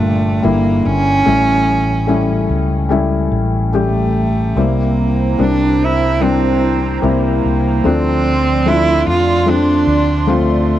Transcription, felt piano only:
0.00 0.39 A#2 medium
0.00 0.42 G3 medium
0.00 0.43 A#3 medium
0.00 1.28 D4 medium
0.00 1.28 F4 medium
0.42 1.22 D3 medium
0.42 1.21 G3 medium
0.42 1.21 A#3 medium
0.42 1.22 E4 medium
1.25 2.45 A2 medium
1.25 2.03 G3 medium
1.25 2.03 A3 medium
1.25 2.04 C#4 medium
1.25 2.04 E4 medium
2.07 2.85 G3 medium
2.07 2.86 A3 medium
2.07 2.86 C#4 medium
2.07 2.86 E4 medium
2.89 3.69 G3 medium
2.89 3.69 A3 medium
2.89 3.69 C#4 medium
2.89 3.70 E4 medium
3.73 4.52 G3 medium
3.73 4.52 A3 medium
3.73 4.53 C#4 medium
3.73 4.53 G4 medium
4.56 5.76 C3 medium
4.56 5.35 G3 medium
4.56 5.35 A#3 medium
4.56 5.35 C4 medium
4.56 5.36 E4 medium
5.38 6.17 G3 medium
5.38 6.17 A#3 medium
5.38 6.17 C4 medium
5.38 6.17 D4 medium
6.20 6.99 G3 medium
6.20 6.99 A#3 medium
6.20 6.99 C4 medium
6.20 6.99 D4 medium
7.02 7.80 G3 medium
7.02 7.80 A#3 medium
7.02 7.81 C4 medium
7.02 7.81 E4 medium
7.84 9.02 D3 medium
7.84 8.61 F3 medium
7.84 8.62 A3 medium
7.84 8.62 C4 medium
7.84 8.62 D4 medium
8.65 9.42 F3 medium
8.65 9.43 A3 medium
8.65 9.43 C4 medium
8.65 9.43 D4 medium
9.46 10.23 F3 medium
9.46 10.23 A3 medium
9.46 10.24 C4 medium
9.46 10.24 D4 medium
10.27 10.79 F3 medium
10.27 10.79 A3 medium
10.27 10.79 C4 medium
10.27 10.79 F4 medium

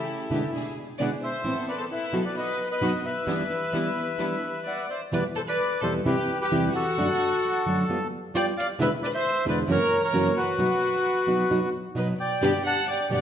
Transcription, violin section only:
0.00 0.73 E4 medium
0.98 1.09 D5 medium
1.22 1.64 C5 medium
1.68 1.79 B4 medium
1.78 1.84 A4 medium
1.92 2.23 E4 medium
2.24 2.35 B4 medium
2.36 2.68 B4 medium
2.70 3.02 B4 medium
3.05 4.86 B4 medium
4.64 4.87 D5 medium
4.90 5.01 C5 medium
5.13 5.24 B4 medium
5.36 5.41 A4 medium
5.47 5.80 B4 medium
5.81 5.92 A4 medium
6.05 6.38 G4 medium
6.40 6.72 G4 medium
6.74 7.84 F#4 medium
8.36 8.45 D5 loud
8.60 8.69 D5 medium
8.82 8.92 B4 medium
9.05 9.09 B4 loud
9.14 9.45 C5 medium
9.48 9.58 B4 medium
9.71 10.01 A#4 medium
10.04 10.35 A#4 medium
10.38 11.70 F#4 medium
11.97 12.07 B4 medium
12.20 12.62 D5 medium
12.67 12.88 F#5 medium
12.89 13.10 D5 medium
13.13 13.21 D5 medium

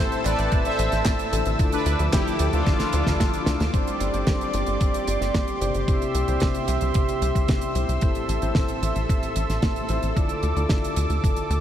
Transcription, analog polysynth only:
0.00 0.19 A4 medium
0.00 0.19 C5 loud
0.25 0.59 B4 medium
0.25 0.59 D5 loud
0.65 0.99 C5 medium
0.65 0.99 E5 loud
1.73 2.06 D4 medium
1.73 2.06 B4 loud
2.13 2.46 E4 medium
2.13 2.46 G4 loud
2.53 3.63 D4 medium
2.53 3.63 F4 loud

